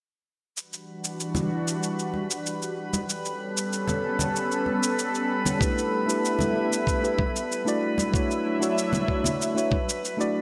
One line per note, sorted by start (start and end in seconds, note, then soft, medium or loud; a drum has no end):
0.55 3.06 E3 medium
0.55 7.78 G3 medium
0.55 3.06 D4 medium
0.55 3.06 F#4 medium
0.55 10.41 B4 medium
0.55 10.41 B5 medium
0.55 shaker soft
0.73 shaker soft
1.04 shaker medium
1.20 shaker soft
1.35 high conga medium
1.35 low conga medium
1.35 shaker soft
1.68 shaker medium
1.83 shaker medium
1.99 shaker soft
2.14 high conga medium
2.31 shaker medium
2.46 shaker medium
2.62 shaker soft
2.93 high conga medium
2.93 shaker medium
3.09 7.78 B3 medium
3.09 5.59 C#4 medium
3.09 7.78 A4 medium
3.09 shaker medium
3.25 shaker soft
3.57 shaker medium
3.73 shaker soft
3.88 high conga medium
3.88 low conga medium
3.88 shaker soft
4.19 low conga medium
4.19 shaker medium
4.36 shaker medium
4.52 shaker soft
4.66 high conga medium
4.83 shaker medium
4.99 shaker medium
5.15 shaker soft
5.45 high conga medium
5.45 low conga medium
5.45 shaker medium
5.59 6.04 A3 medium
5.59 6.04 D4 medium
5.59 6.04 E4 medium
5.59 7.80 E4 medium
5.59 6.05 G4 medium
5.59 6.05 B4 medium
5.59 kick loud
5.59 shaker medium
5.78 shaker soft
6.06 6.51 A3 medium
6.06 6.51 D4 medium
6.06 6.52 E4 medium
6.06 6.52 G4 medium
6.06 6.53 B4 medium
6.06 shaker medium
6.25 shaker soft
6.39 high conga medium
6.39 low conga medium
6.39 shaker soft
6.53 6.98 A3 medium
6.53 6.99 D4 medium
6.53 6.99 E4 medium
6.53 6.99 G4 medium
6.53 7.00 B4 medium
6.73 shaker medium
6.87 kick loud
6.87 shaker medium
7.01 7.21 A3 medium
7.01 7.22 D4 medium
7.01 7.22 E4 medium
7.01 7.23 G4 medium
7.01 7.23 B4 medium
7.01 shaker soft
7.18 kick medium
7.18 high conga medium
7.36 shaker medium
7.52 shaker medium
7.65 8.09 A3 medium
7.65 8.10 D4 medium
7.65 8.10 E4 medium
7.65 8.10 F#4 medium
7.65 8.11 D5 loud
7.65 shaker soft
7.82 10.41 F#3 medium
7.82 10.41 D4 medium
7.82 10.41 E4 medium
7.82 10.41 E5 medium
7.98 high conga medium
7.98 shaker medium
8.12 8.56 A3 medium
8.12 8.57 D4 medium
8.12 8.57 E4 medium
8.12 8.58 F#4 medium
8.12 8.58 C#5 medium
8.12 kick loud
8.12 shaker medium
8.31 shaker soft
8.59 9.04 A3 medium
8.59 9.04 D4 medium
8.59 9.05 E4 medium
8.59 9.05 F#4 medium
8.59 9.05 C#5 medium
8.59 shaker medium
8.78 shaker soft
8.93 high conga medium
8.93 low conga medium
8.93 shaker soft
9.07 9.51 A3 medium
9.07 9.52 D4 medium
9.07 9.52 E4 medium
9.07 9.53 F#4 medium
9.07 9.53 C#5 medium
9.07 kick medium
9.24 low conga medium
9.24 shaker medium
9.42 shaker medium
9.54 9.74 A3 medium
9.54 9.75 D4 medium
9.54 9.75 E4 medium
9.54 9.76 F#4 medium
9.54 9.76 C#5 medium
9.54 shaker soft
9.71 kick medium
9.71 high conga medium
9.89 shaker medium
10.05 shaker medium
10.17 10.41 A3 medium
10.17 10.41 D4 medium
10.17 10.41 E4 medium
10.17 10.41 F#4 medium
10.17 10.41 D5 loud
10.17 shaker soft